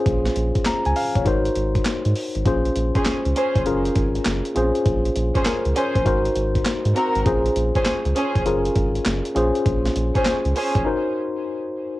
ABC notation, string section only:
X:1
M:4/4
L:1/16
Q:"Swing 16ths" 1/4=100
K:Bbm
V:1 name="String section"
z16 | z3 [DAc] z2 [DAc] z8 z | z3 [DAc] z2 [DAc] z6 z [CGB] z | z3 [DAc] z2 [DAc] z8 z |
z3 [DAc] z2 [DAc] z8 z |]